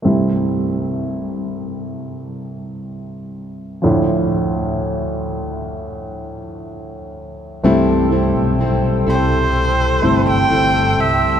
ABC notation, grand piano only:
X:1
M:4/4
L:1/8
Q:1/4=63
K:C
V:1 name="Grand piano"
[A,CE]8 | [F,DE]8 | [A,CE]4 z [A,CE]3 |]
V:2 name="Grand piano" clef=bass
[C,,G,,]8 | [D,,A,,]8 | G,,3 z4 z |]